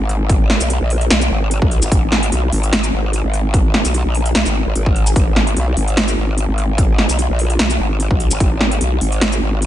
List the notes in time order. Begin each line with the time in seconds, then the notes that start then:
0.00 G#1
0.09 closed hi-hat
0.29 kick, closed hi-hat
0.50 snare
0.61 B1, closed hi-hat, shaker
0.70 closed hi-hat
0.81 A#1
0.90 open hi-hat
1.01 closed hi-hat
1.10 B1, snare, closed hi-hat
1.21 shaker
1.31 G#1
1.51 closed hi-hat
1.62 B1, kick
1.71 closed hi-hat
1.82 G#1, shaker
1.92 G#1, kick, closed hi-hat
2.12 snare
2.23 closed hi-hat
2.32 B1, closed hi-hat
2.52 G#1, open hi-hat
2.63 closed hi-hat
2.73 snare, closed hi-hat
2.84 shaker
2.93 G#1
3.13 closed hi-hat
3.24 G#1
3.33 closed hi-hat
3.54 kick, closed hi-hat
3.74 snare
3.85 B1, closed hi-hat, shaker
3.94 closed hi-hat
4.05 A#1
4.15 open hi-hat
4.26 closed hi-hat
4.35 B1, snare, closed hi-hat
4.46 G#1, shaker
4.66 G#1
4.75 G#1, closed hi-hat
4.86 kick
4.96 closed hi-hat
5.07 shaker
5.16 G#1, kick, closed hi-hat
5.36 snare
5.47 closed hi-hat
5.56 B1, closed hi-hat
5.77 G#1, open hi-hat
5.88 closed hi-hat
5.97 snare, closed hi-hat
6.08 shaker
6.17 G#1
6.38 closed hi-hat
6.48 G#1
6.58 closed hi-hat
6.78 kick, closed hi-hat
6.98 snare
7.09 B1, closed hi-hat, shaker
7.19 closed hi-hat
7.30 A#1
7.39 open hi-hat
7.50 closed hi-hat
7.59 B1, snare, closed hi-hat
7.70 shaker
7.80 G#1
8.00 closed hi-hat
8.11 B1, kick
8.20 closed hi-hat
8.31 G#1, shaker
8.40 G#1, kick, closed hi-hat
8.61 snare
8.71 closed hi-hat
8.81 B1, closed hi-hat
9.01 G#1, open hi-hat
9.12 closed hi-hat
9.21 snare, closed hi-hat
9.32 shaker
9.42 G#1
9.62 closed hi-hat